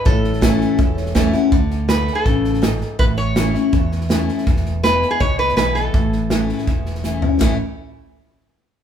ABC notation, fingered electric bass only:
X:1
M:4/4
L:1/8
Q:1/4=163
K:A
V:1 name="Fingered electric bass" clef=bass
A,,,4 E,,,4 | D,,4 A,,,4 | A,,,4 E,,4 | E,,,4 C,,2 B,,,2 |
A,,,4 E,,,4 | A,,, z6 z |]